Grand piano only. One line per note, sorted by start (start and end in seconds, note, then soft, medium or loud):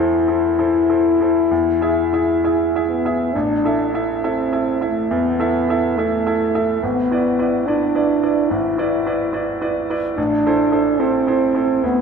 0.00 1.51 E2 soft
0.00 0.25 E4 soft
0.00 0.25 A4 soft
0.00 0.25 C5 soft
0.28 0.55 E4 soft
0.28 0.56 A4 soft
0.28 0.56 C5 soft
0.59 0.86 E4 soft
0.59 0.86 A4 soft
0.59 0.87 C5 soft
0.90 1.17 E4 soft
0.90 1.17 A4 soft
0.90 1.17 C5 soft
1.21 1.48 E4 soft
1.21 1.48 A4 soft
1.21 1.49 C5 soft
1.51 1.81 E2 soft
1.81 2.09 E4 soft
1.81 2.09 G#4 soft
1.81 2.10 E5 soft
2.13 2.40 E4 soft
2.13 2.40 G#4 soft
2.13 2.41 E5 soft
2.44 2.71 E4 soft
2.44 2.71 G#4 soft
2.44 2.71 E5 soft
2.76 3.02 E4 soft
2.76 3.02 G#4 soft
2.76 3.02 E5 soft
3.05 3.32 E4 soft
3.05 3.32 G#4 soft
3.05 3.32 E5 soft
3.36 3.63 A1 soft
3.64 3.90 E4 soft
3.64 3.91 A4 soft
3.64 3.91 E5 soft
3.94 4.20 E4 soft
3.94 4.20 A4 soft
3.94 4.20 E5 soft
4.24 4.50 E4 soft
4.24 4.49 A4 soft
4.24 4.50 E5 soft
4.53 4.78 E4 soft
4.53 4.78 A4 soft
4.53 4.78 E5 soft
4.81 5.07 E4 soft
4.81 5.07 A4 soft
4.81 5.08 E5 soft
5.11 5.38 E2 soft
5.39 5.65 E4 soft
5.39 5.65 A4 soft
5.39 5.66 E5 soft
5.69 5.94 E4 soft
5.69 5.95 A4 soft
5.69 5.95 E5 soft
5.98 6.23 E4 soft
5.98 6.23 A4 soft
5.98 6.23 E5 soft
6.27 6.52 E4 soft
6.27 6.52 A4 soft
6.27 6.52 E5 soft
6.55 6.80 E4 soft
6.55 6.80 A4 soft
6.55 6.80 E5 soft
6.83 7.10 G#1 soft
7.11 7.36 E4 soft
7.11 7.37 B4 soft
7.11 7.37 D5 soft
7.39 7.64 E4 soft
7.39 7.64 B4 soft
7.39 7.64 D5 soft
7.67 7.92 E4 soft
7.67 7.92 B4 soft
7.67 7.93 D5 soft
7.95 8.20 E4 soft
7.95 8.20 B4 soft
7.95 8.20 D5 soft
8.23 8.48 E4 soft
8.23 8.48 B4 soft
8.23 8.48 D5 soft
8.51 8.78 G#1 soft
8.78 9.04 E4 soft
8.78 9.04 B4 soft
8.78 9.04 D5 soft
9.06 9.31 E4 soft
9.06 9.32 B4 soft
9.06 9.32 D5 soft
9.33 9.58 E4 soft
9.33 9.59 B4 soft
9.33 9.59 D5 soft
9.61 9.87 E4 soft
9.61 9.86 B4 soft
9.61 9.87 D5 soft
9.90 10.15 E4 soft
9.90 10.15 B4 soft
9.90 10.15 D5 soft
10.17 10.44 A1 soft
10.47 10.70 E4 soft
10.47 10.71 A4 soft
10.47 10.71 C5 soft
10.72 10.97 E4 soft
10.72 10.97 A4 soft
10.72 10.97 C5 soft
11.00 11.24 E4 soft
11.00 11.24 A4 soft
11.00 11.25 C5 soft
11.27 11.52 E4 soft
11.27 11.52 A4 soft
11.27 11.52 C5 soft
11.55 11.80 E4 soft
11.55 11.80 A4 soft
11.55 11.80 C5 soft
11.83 12.01 D2 soft